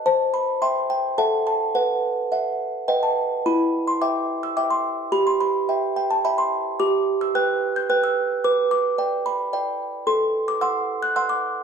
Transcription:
\new Staff \with { instrumentName = "Music box" } { \time 3/4 \key e \minor \tempo 4 = 108 << { a''8 b''8 c'''8 g''8 a''8 a''8 | fis''2 g''16 a''8. | b''8. c'''16 d'''8. e'''16 d'''16 c'''8. | b''16 c'''16 b''4 g''16 a''16 b''16 c'''8. |
d'''8. e'''16 fis'''8. g'''16 fis'''16 e'''8. | d'''8 d'''4 b''8 r4 | c'''8. d'''16 e'''8. fis'''16 e'''16 d'''8. | } \\ { c''4 <e'' g''>4 <a' e'' fis''>4 | b'4 <e'' fis''>4 <b' dis'' fis''>4 | e'4 <e'' g''>4 <e'' g''>4 | g'4 <e'' g''>4 <e'' g''>4 |
g'4 <b' g''>4 <b' g''>4 | b'4 <d'' g''>4 <d'' g''>4 | a'4 <fis'' c'''>4 <fis'' c'''>4 | } >> }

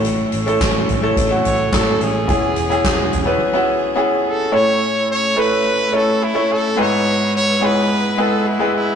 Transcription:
<<
  \new Staff \with { instrumentName = "Trumpet" } { \time 4/4 \key a \major \tempo 4 = 107 r2 r8 cis''8 a'8 gis'8~ | gis'2. r8 a'8 | cis''4 cis''8 b'4 a'8 e'8 a'8 | cis''4 cis''8 b'4 a'8 e'8 e'8 | }
  \new Staff \with { instrumentName = "Grand piano" } { \time 4/4 \key a \major <a cis' e' a'>8 r16 <a cis' e' a'>4 <a cis' e' a'>8 <a cis' e' fis'>8. <a cis' e' a'>4 | <b cis' e' gis'>8. <b cis' e' gis'>4 <b cis' e' b'>8 <b cis' e' fis'>8. <b cis' e' gis'>4 | <a cis' e' a' cis''>4~ <a cis' e' a' cis''>16 r16 <a cis' e' a' b'>4 <a cis' e' a' cis''>8. <a cis' e' a' cis''>8. | <gis b e' gis' b'>4~ <gis b e' gis' b'>16 r16 <gis b e' gis' cis''>4 <gis b e' gis' b'>8. <gis b e' gis' b'>8. | }
  \new Staff \with { instrumentName = "Grand piano" } { \clef bass \time 4/4 \key a \major a,4 r2. | e4. r2 r8 | a,4. r2 r8 | gis,4. r2 r8 | }
  \new Staff \with { instrumentName = "String section" } { \time 4/4 \key a \major << { <a cis'>1 | gis'1 | <cis' e'>1 | b'1 | } \\ { e1~ | e1 | a1 | gis1 | } >> }
  \new Staff \with { instrumentName = "Fingered electric bass" } { \clef bass \time 4/4 \key a \major a,,8 a,,8 a,,8 a,,8 a,,8 a,,8 a,,8 a,,8 | e,,8 e,,8 e,,8 e,,8 r2 | r1 | r1 | }
  \new DrumStaff \with { instrumentName = "Drums" } \drummode { \time 4/4 hh8 hh16 hh16 <hc hh bd sn>8 <hh tomfh>8 <hh bd>8 <hh tomfh>8 <hc hh bd sn>8 hh8 | <hh bd>8 hh16 hh16 <hc hh bd sn>8 <hh tomfh>8 r4 r4 | r4 r4 r4 r4 | r4 r4 r4 r4 | }
>>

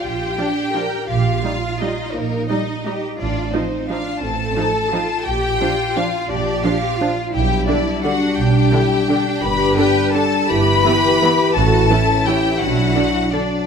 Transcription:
<<
  \new Staff \with { instrumentName = "Violin section" } { \time 3/4 \key bes \major \tempo 4 = 170 g''2. | f''2 ees''4 | bes'4 ees''4. r8 | d''4 c''4 f''4 |
a''2. | g''2 f''4 | d''4 f''4. r8 | \key g \lydian g''4 d''4 fis''4 |
g''2. | b''4 g''4 a''4 | b''2. | a''2 g''4 |
fis''2 d''4 | }
  \new Staff \with { instrumentName = "Violin section" } { \time 3/4 \key bes \major g'2. | f'2 ees'4 | bes4 ees'4. r8 | d'4 c'4 f'4 |
a'2. | g'2 f'4 | d'4 f'4. r8 | \key g \lydian g'4 d'4 fis'4 |
g'2. | b'4 g'4 a'4 | b'2. | a'2 g'4 |
fis'2 d'4 | }
  \new Staff \with { instrumentName = "Cello section" } { \time 3/4 \key bes \major f'4 d'4 bes'4 | g'4 f'2 | ees'2 g'4 | f'4 ees'4 d'4 |
c'4 a'4 f'4 | g'4 f'2 | g'2 f'4 | \key g \lydian e'2 d'4~ |
d'4 e'4 d'4 | g'4 b'4 a'4 | g'2. | fis'4 e'2~ |
e'2 d'4 | }
  \new Staff \with { instrumentName = "French horn section" } { \time 3/4 \key bes \major r4 <f d'>4 <f d'>4 | r4 <g ees'>4 <g ees'>4 | r4 <g ees'>4 <g ees'>4 | r4 <f ees'>4 <f ees'>4 |
r4 <f ees'>4 <f ees'>4 | r4 <f d'>4 <f d'>4 | r4 <f d'>4 <f d'>4 | \key g \lydian <g d'>2.~ |
<g d'>2. | <g d'>2. | <e e'>2. | <e cis'>2. |
<fis d'>2 <fis d'>4 | }
  \new Staff \with { instrumentName = "Viola section" } { \time 3/4 \key bes \major r4 <f d'>4 <f d'>4 | r4 <g ees'>4 <g ees'>4 | r4 <g ees'>4 <g ees'>4 | r4 <f ees'>4 <f ees'>4 |
r4 <f ees'>4 <f ees'>4 | r4 <f d'>4 <f d'>4 | r4 <f d'>4 <f d'>4 | \key g \lydian r4 <d d'>4 <d d'>4 |
r4 <d d'>4 <d d'>4 | r4 <d d'>4 <d d'>4 | r4 <e b>4 <e b>4 | r4 <e cis'>4 <e cis'>4 |
r4 <d d'>4 <d d'>4 | }
  \new Staff \with { instrumentName = "Double bass section" } { \clef bass \time 3/4 \key bes \major bes,,4 r2 | bes,,4 r2 | bes,,4 r2 | a,,4 r2 |
a,,4 r2 | bes,,4 r2 | bes,,4 r2 | \key g \lydian b,,4 r2 |
b,,4 r2 | g,,4 r2 | g,,4 r2 | a,,4 r2 |
b,,4 r2 | }
>>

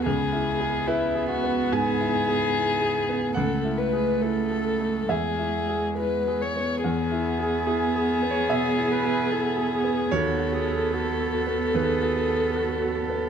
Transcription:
<<
  \new Staff \with { instrumentName = "Violin" } { \time 4/4 \key e \major \tempo 4 = 73 gis'4 e'8 fis'8 gis'2 | a'8 b'8 a'4 gis'4 b'8 cis''8 | gis'1 | a'1 | }
  \new Staff \with { instrumentName = "Viola" } { \time 4/4 \key e \major r1 | r1 | r2 gis'8 b'8 a'8 gis'8 | fis'8 gis'8 a'8 fis'8 gis'4 fis'8 a'8 | }
  \new Staff \with { instrumentName = "Grand piano" } { \time 4/4 \key e \major << { r4 b'4 gis''2 | fis''2 e''4 r4 | r4 gis'8. cis''16 e''2 | cis''2 b'2 | } \\ { \tuplet 3/2 { cis,8 e'8 gis'8 e'8 gis'8 b8 gis,8 e'8 gis'8 e'8 gis'8 b8 } | \tuplet 3/2 { cis,8 e'8 gis'8 e'8 a'8 a8 e,8 e'8 gis'8 e'8 gis'8 b8 } | \tuplet 3/2 { e,8 e'8 gis'8 e'8 gis'8 b8 b,8 e'8 gis'8 e'8 gis'8 b8 } | \tuplet 3/2 { dis,8 fis'8 a'8 fis'8 a'8 b8 dis,8 fis'8 a'8 fis'8 a'8 b8 } | } >> }
  \new Staff \with { instrumentName = "Cello" } { \time 4/4 \key e \major b1 | a2 gis4.~ gis16 r16 | b1 | b1 | }
>>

